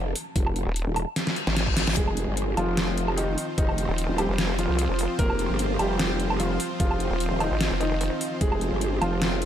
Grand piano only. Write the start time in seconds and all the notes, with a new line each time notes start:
1.97 G#3 G#4
2.57 F3 F4
3.17 D#3 D#4
3.58 D#3 D#4
4.18 G3 G4
4.59 F3 F4
5.19 A#3 A#4
5.79 G3 G4
6.40 F3 F4
6.80 F3 F4
7.40 D#3 D#4
7.81 D#3 D#4
8.41 G#3 G#4
9.02 F3 F4